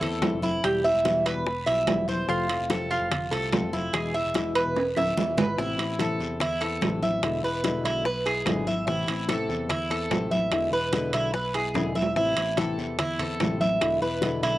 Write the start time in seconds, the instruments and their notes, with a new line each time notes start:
0.01 picked electric bass E2, nylon-string guitar A3 C4 E4, cuban tres A4, high bongo, high conga, low conga, high timbale
0.22 nylon-string guitar E3 A3 C4 E4, high bongo, low bongo, high conga, high timbale, low timbale, short guiro
0.33 picked electric bass F1
0.42 nylon-string guitar A3 C4 E4, cuban tres E4, high conga, short guiro
0.63 picked electric bass E1, nylon-string guitar B2 E3 G3 B3 E4, cuban tres G4, high bongo, high conga, high timbale, long guiro
0.84 nylon-string guitar G3 B3 E4, cuban tres E5, high bongo, high conga
0.95 picked electric bass E1
1.05 nylon-string guitar B2 E3 G3 B3 E4, high bongo, high conga, high timbale, low timbale, short guiro
1.26 cuban tres B4, high bongo, high conga, high timbale, short guiro
1.36 picked electric bass E1
1.46 muted nylon-string guitar stroke, high bongo, high conga, long guiro
1.66 picked electric bass B1, nylon-string guitar G3 B3 E4, cuban tres E5, high conga, high timbale
1.87 nylon-string guitar B2 E3 G3 B3 E4, high bongo, low bongo, high conga, high timbale, low timbale, short guiro
1.98 picked electric bass E1
2.08 nylon-string guitar G3 B3 E4, cuban tres C5, high bongo, high conga, short guiro
2.28 picked electric bass F1, nylon-string guitar C3 F3 A3 C4 F4, cuban tres F4, high bongo, high conga, long guiro
2.49 nylon-string guitar A3 C4 F4, high bongo, high conga, high timbale
2.60 picked electric bass F1
2.70 nylon-string guitar C3 F3 A3 C4 F4, cuban tres A4, high bongo, high conga, high timbale, low timbale, short guiro
2.91 cuban tres F4, high bongo, high conga, short guiro
3.00 picked electric bass F1
3.11 muted nylon-string guitar stroke, high bongo, high conga, low conga, high timbale, long guiro
3.31 picked electric bass C2, nylon-string guitar A3 C4 F4, cuban tres A4, high bongo, high conga, high timbale
3.52 nylon-string guitar C3 F3 A3 C4 F4, high bongo, low bongo, high conga, high timbale, low timbale, short guiro
3.63 picked electric bass F1
3.73 nylon-string guitar A3 C4 F4, cuban tres E4, high conga, short guiro
3.93 picked electric bass E1, nylon-string guitar B2 E3 G#3 B3 E4, cuban tres G#4, high bongo, high conga, high timbale, long guiro
4.14 nylon-string guitar G#3 B3 E4, cuban tres E5, high bongo, high conga
4.25 picked electric bass E1
4.34 nylon-string guitar B2 E3 G#3 B3 E4, high bongo, high conga, high timbale, low timbale, short guiro
4.55 cuban tres B4, high bongo, high conga, high timbale, short guiro
4.66 picked electric bass E1
4.76 muted nylon-string guitar stroke, high bongo, high conga, high timbale, long guiro
4.96 picked electric bass D1, nylon-string guitar G#3 B3 E4, cuban tres E5, high bongo, high conga, high timbale
5.17 picked electric bass E1, nylon-string guitar B2 E3 G#3 B3 E4, high conga, low timbale, short guiro
5.37 picked electric bass G#1, nylon-string guitar G#3 B3 E4, cuban tres B4, low bongo, low conga, low timbale, short guiro
5.58 picked electric bass A1, nylon-string guitar C3 E3 B3 C4 E4, cuban tres E4, high bongo, long guiro
5.79 picked electric bass A1, nylon-string guitar B3 C4 E4, high bongo, high conga, high timbale
5.99 nylon-string guitar C3 E3 B3 C4 E4, cuban tres A4, high bongo, high conga, high timbale, low timbale, short guiro
6.20 picked electric bass E2, high bongo, high conga, short guiro
6.40 cuban tres E4, muted nylon-string guitar stroke, high bongo, high conga, low conga, high timbale, long guiro
6.61 nylon-string guitar B3 C4 E4, cuban tres A4, high bongo, high timbale
6.81 picked electric bass A1, nylon-string guitar C3 E3 B3 C4 E4, high bongo, low bongo, high conga, high timbale, low timbale, short guiro
7.02 nylon-string guitar B3 C4 E4, cuban tres E5, high conga, short guiro
7.22 picked electric bass E1, nylon-string guitar B2 D3 G#3 B3 E4, high bongo, high conga, high timbale, long guiro
7.43 picked electric bass E1, nylon-string guitar G#3 B3 E4, cuban tres B4, high bongo, high conga
7.64 nylon-string guitar B2 D3 G#3 B3 E4, high bongo, high conga, high timbale, low timbale, short guiro
7.84 picked electric bass B1, cuban tres E4, high bongo, high conga, high timbale, short guiro
8.05 cuban tres B4, muted nylon-string guitar stroke, high bongo, high conga, long guiro
8.26 nylon-string guitar G#3 B3 E4, cuban tres G#4, high conga, high timbale
8.46 picked electric bass G#1, nylon-string guitar B2 D3 G#3 B3 E4, high bongo, low bongo, high conga, high timbale, low timbale, short guiro
8.67 nylon-string guitar G#3 B3 E4, cuban tres E5, high bongo, high conga, short guiro
8.87 picked electric bass A1, nylon-string guitar C3 E3 B3 C4 E4, cuban tres E4, high bongo, high conga, long guiro
9.08 picked electric bass A1, nylon-string guitar B3 C4 E4, high bongo, high conga, high timbale
9.29 nylon-string guitar C3 E3 B3 C4 E4, cuban tres A4, high bongo, high conga, high timbale, low timbale, short guiro
9.49 picked electric bass E2, high bongo, high conga, short guiro
9.69 cuban tres E4, muted nylon-string guitar stroke, high bongo, high conga, low conga, high timbale, long guiro
9.90 nylon-string guitar B3 C4 E4, cuban tres A4, high bongo, high conga, high timbale
10.10 picked electric bass A1, nylon-string guitar C3 E3 B3 C4 E4, high bongo, low bongo, high conga, high timbale, low timbale, short guiro
10.30 nylon-string guitar B3 C4 E4, cuban tres E5, high conga, short guiro
10.51 picked electric bass E1, nylon-string guitar B2 D3 G#3 B3 E4, high bongo, high conga, high timbale, long guiro
10.72 picked electric bass E1, nylon-string guitar G#3 B3 E4, cuban tres B4, high bongo, high conga
10.92 nylon-string guitar B2 D3 G#3 B3 E4, high bongo, high conga, high timbale, low timbale, short guiro
11.13 picked electric bass B1, cuban tres E4, high bongo, high conga, high timbale, short guiro
11.33 cuban tres B4, muted nylon-string guitar stroke, high bongo, high conga, long guiro
11.54 nylon-string guitar G#3 B3 E4, cuban tres G#4, high conga, high timbale
11.74 picked electric bass E1, nylon-string guitar B2 D3 G#3 B3 E4, high bongo, low bongo, high conga, high timbale, short guiro
11.95 nylon-string guitar G#3 B3 E4, cuban tres E5, high bongo, high conga, short guiro
12.02 low timbale
12.16 picked electric bass A1, nylon-string guitar C3 E3 B3 C4 E4, cuban tres E4, high bongo, high conga, long guiro
12.36 picked electric bass A1, nylon-string guitar B3 C4, high bongo, high conga, high timbale
12.57 nylon-string guitar C3 E3 B3 C4 E4, cuban tres A4, high bongo, high conga, high timbale, low timbale, short guiro
12.78 picked electric bass E2, high bongo, high conga, short guiro
12.99 cuban tres E4, muted nylon-string guitar stroke, high bongo, high conga, low conga, high timbale, long guiro
13.19 nylon-string guitar B3 C4 E4, cuban tres A4, high bongo, high conga, low conga, high timbale
13.40 picked electric bass A1, nylon-string guitar C3 E3 B3 C4 E4, high bongo, low bongo, high conga, high timbale, low timbale, short guiro
13.60 nylon-string guitar B3 C4 E4, cuban tres E5, high conga, short guiro
13.80 picked electric bass E1, nylon-string guitar B2 D3 G#3 B3 E4, high bongo, high timbale, long guiro
14.01 picked electric bass E1, nylon-string guitar G#3 B3 E4, cuban tres B4, high bongo, high conga
14.22 nylon-string guitar B2 D3 G#3 B3 E4, high bongo, high conga, high timbale, low timbale, short guiro
14.43 picked electric bass B1, cuban tres E4, high bongo, high conga, high timbale, short guiro